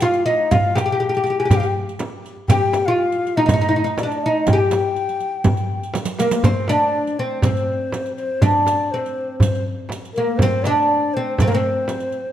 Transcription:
0.00 F4 F5, riq, darbuka tek, frame drum
0.14 riq, darbuka ka
0.26 D#4 D#5, riq, darbuka ka
0.40 darbuka ka
0.51 F4 F5, riq, frame drum, darbuka dum
0.75 G4 G5, riq, darbuka tek, frame drum
0.86 G4
0.92 G4
1.00 G4
1.09 G4
1.14 G4, riq, darbuka ka
1.24 G4, riq, darbuka ka
1.30 G4
1.39 G4 G#5
1.45 G4 G5
1.50 G4, riq, darbuka dum, frame drum
1.56 G4 F5
1.63 G5, riq
1.89 riq
1.99 riq, darbuka tek, frame drum
2.12 darbuka ka
2.24 riq, darbuka ka
2.37 darbuka ka
2.48 G4 G5, riq, darbuka dum, frame drum
2.73 riq, darbuka tek, frame drum
2.86 F4 F5
3.12 riq, darbuka ka
3.24 riq, darbuka ka
3.37 D#4 D#5
3.46 D#4, riq, frame drum, darbuka dum
3.54 D#4
3.61 D#4, riq, darbuka ka
3.69 D#4
3.76 D#4
3.84 D#4, riq
3.98 D5, riq, darbuka tek, frame drum
4.03 D4
4.10 riq, darbuka ka
4.23 D#4 D#5, darbuka ka
4.35 darbuka ka
4.47 G5, riq, frame drum, darbuka dum
4.53 G4 G#5
4.60 G5
4.71 riq, darbuka tek, frame drum
4.96 riq, darbuka ka
5.09 riq, darbuka ka
5.20 riq, darbuka ka
5.44 riq, frame drum, darbuka dum
5.57 riq, darbuka ka
5.83 riq, darbuka ka
5.94 riq, darbuka tek, frame drum
6.05 riq, darbuka ka
6.19 A#3 A#4, riq, darbuka tek
6.31 riq, darbuka ka
6.43 C4 C5, riq, darbuka dum, frame drum
6.68 D4 D5, riq, darbuka tek, frame drum
6.95 darbuka ka
7.07 riq, darbuka ka
7.19 C4 C5, darbuka ka
7.42 C4 C5, riq, frame drum, darbuka dum
7.57 riq
7.92 riq, darbuka tek, frame drum
8.06 riq, darbuka ka
8.17 C5, riq
8.31 darbuka ka
8.42 D4 D5, riq, frame drum, darbuka dum
8.66 riq, darbuka tek, frame drum
8.91 C4 C5, darbuka ka
9.03 riq, darbuka ka
9.15 darbuka ka
9.39 C5, riq, darbuka dum, frame drum
9.55 riq
9.89 riq, darbuka tek, frame drum
10.02 riq, darbuka ka
10.14 A#3 A#4, riq
10.27 darbuka ka
10.38 C5, frame drum, darbuka dum
10.42 C4, riq
10.63 D4 D5, riq, darbuka tek, frame drum
10.91 darbuka ka
11.03 darbuka ka
11.14 C4 C5, darbuka ka
11.37 C5, riq, frame drum, darbuka dum
11.41 C4
11.48 A#3 C5
11.52 C4, riq
11.88 riq, darbuka tek, frame drum
12.00 riq, darbuka ka
12.12 riq
12.26 darbuka ka

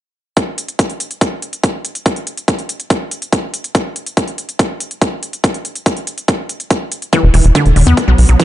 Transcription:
0.37 kick, closed hi-hat
0.58 closed hi-hat
0.68 closed hi-hat
0.79 kick, closed hi-hat
0.90 closed hi-hat
1.00 closed hi-hat
1.11 closed hi-hat
1.21 kick, closed hi-hat
1.42 closed hi-hat
1.53 closed hi-hat
1.64 kick, closed hi-hat
1.85 closed hi-hat
1.95 closed hi-hat
2.06 kick, closed hi-hat
2.16 closed hi-hat
2.27 closed hi-hat
2.37 closed hi-hat
2.48 kick, closed hi-hat
2.59 closed hi-hat
2.69 closed hi-hat
2.80 closed hi-hat
2.90 kick, closed hi-hat
3.11 closed hi-hat
3.22 closed hi-hat
3.33 kick, closed hi-hat
3.54 closed hi-hat
3.64 closed hi-hat
3.75 kick, closed hi-hat
3.96 closed hi-hat
4.06 closed hi-hat
4.17 kick, closed hi-hat
4.28 closed hi-hat
4.38 closed hi-hat
4.49 closed hi-hat
4.59 kick, closed hi-hat
4.80 closed hi-hat
4.91 closed hi-hat
5.02 kick, closed hi-hat
5.23 closed hi-hat
5.33 closed hi-hat
5.44 kick, closed hi-hat
5.54 closed hi-hat
5.65 closed hi-hat
5.75 closed hi-hat
5.86 kick, closed hi-hat
5.97 closed hi-hat
6.07 closed hi-hat
6.18 closed hi-hat
6.28 kick, closed hi-hat
6.49 closed hi-hat
6.60 closed hi-hat
6.71 kick, closed hi-hat
6.92 closed hi-hat
7.02 closed hi-hat
7.13 E3, kick, closed hi-hat
7.23 E1
7.34 E1 E3, open hi-hat
7.44 E1, closed hi-hat
7.55 D3, kick, closed hi-hat
7.66 E1, closed hi-hat
7.76 E1 D3, open hi-hat
7.87 E2 B3, closed hi-hat
7.97 kick, closed hi-hat
8.08 B1 F#3
8.18 B1, open hi-hat
8.29 B1 F#3, closed hi-hat
8.40 E3, kick, closed hi-hat

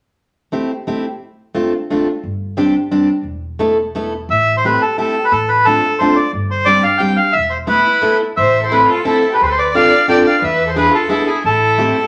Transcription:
0.52 A3 C4 E4 G4
0.87 A3 C4 E4 G4
1.55 A3 C4 D4 F4
1.90 A3 C4 D4 F4
2.23 G1
2.57 G3 C4 D4 G4
2.91 G3 C4 D4 G4
3.23 E1
3.59 A3 B3 E4 A4
3.95 A3 B3 E4 A4
4.29 A1 E5
4.57 C5
4.65 A3 C4 E4 G4 B4
4.82 A4
4.98 A3 C4 E4 G4 A4
5.25 B4
5.31 A1 A4
5.49 B4
5.65 A3 C4 D4 F4 A4
5.99 A3 C4 D4 F4 C5
6.16 D5
6.33 G1
6.51 C5
6.65 G3 C4 D4 G4 D5
6.83 F5
6.98 G3 C4 D4 G4 G5
7.16 F5
7.33 E1 E5
7.50 C5
7.67 A3 B3 E4 A4 B4
8.02 A3 B3 E4 A4
8.37 A1 C5 E5
8.62 A4 C5
8.69 A3 C4 E4 A4 B4
8.88 F4 A4
9.05 A3 C4 E4 A4
9.32 G4 B4
9.39 D2 A4 C5
9.43 G4 B4
9.48 A4
9.52 C5
9.58 B4 D5
9.74 C4 D4 F4 A4 D5 F5
10.08 C4 D4 F4 A4 D5 G5
10.25 D5 F5
10.42 E2 B4 E5
10.66 A4 C5
10.75 B3 D4 E4 G#4 B4
10.92 F4 A4
11.09 B3 D4 E4 G#4 A4
11.27 E4 G#4
11.43 A1 E4 A4
11.78 A3 C4 E4 G4

